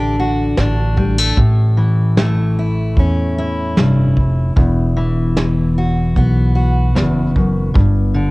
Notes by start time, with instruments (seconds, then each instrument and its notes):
Already playing: upright bass A1, steel-string acoustic guitar D2 D3 A3 D4 G4
0.19 steel-string acoustic guitar F#4
0.57 upright bass A1, steel-string acoustic guitar D4, snare
0.97 steel-string acoustic guitar G3, kick
1.18 steel-string acoustic guitar A3
1.37 upright bass A1, steel-string acoustic guitar A2, kick
1.77 steel-string acoustic guitar E3
2.17 steel-string acoustic guitar A3, snare
2.59 steel-string acoustic guitar E4
2.97 upright bass E2, steel-string acoustic guitar C#4, kick
3.38 steel-string acoustic guitar E4
3.77 upright bass F1, steel-string acoustic guitar G2, snare
4.17 kick
4.56 upright bass E1, steel-string acoustic guitar E2, kick
4.97 steel-string acoustic guitar E3
5.37 snare
5.78 steel-string acoustic guitar F#4
6.16 upright bass B1, steel-string acoustic guitar B3, kick
6.55 steel-string acoustic guitar F#4
6.95 upright bass F#1, steel-string acoustic guitar E2, snare
7.36 steel-string acoustic guitar F#2, kick
7.74 upright bass G1, steel-string acoustic guitar G2, kick
8.14 steel-string acoustic guitar D3